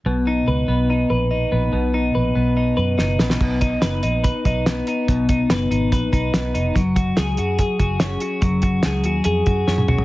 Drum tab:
CC |----------------|----------------|x---------------|----------------|
HH |----------------|----------------|--x-x-x-x-x-x-x-|x-x-x-x-x-x-x-x-|
SD |----------------|------------o-oo|----o-------o---|----o-------o---|
T1 |----------------|----------------|----------------|----------------|
T2 |----------------|----------------|----------------|----------------|
FT |----------------|----------------|----------------|----------------|
BD |----------------|----------------|o-o-----o-o-----|o-o-----o-o-----|

CC |----------------|----------------|
HH |x-x-x-x-x-x-x-x-|x-x-x-x-x-x-----|
SD |----o-------o---|----o-------o---|
T1 |----------------|-------------o--|
T2 |----------------|--------------o-|
FT |----------------|---------------o|
BD |o-o-----o-o-----|o-o-------o-----|